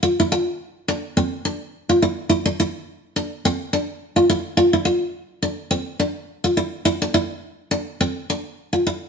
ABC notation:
X:1
M:4/4
L:1/16
Q:"Swing 16ths" 1/4=105
K:Cmix
V:1 name="Steel-string acoustic guitar"
F E F2 z2 D2 C2 D2 z F E2 | E z E2 z2 D2 C2 D2 z F E2 | F E F2 z2 D2 C2 D2 z F E2 | E D E2 z2 D2 C2 D2 z F E2 |]